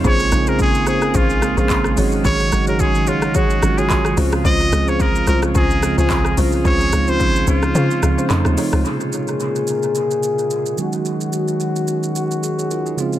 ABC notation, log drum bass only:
X:1
M:4/4
L:1/16
Q:"Swing 16ths" 1/4=109
K:Bbm
V:1 name="Log drum bass" clef=bass
B,,,2 B,,,4 A,,,2 B,,,3 B,,,3 A,,,2 | A,,,2 A,,,4 B,,,3 z A,,,4 D,,2 | D,,2 D,,4 C,,2 D,,3 D,,3 C,,2 | D,,2 D,,4 D,,2 D, z D,, z F,, E,, z D,, |
z16 | z16 |]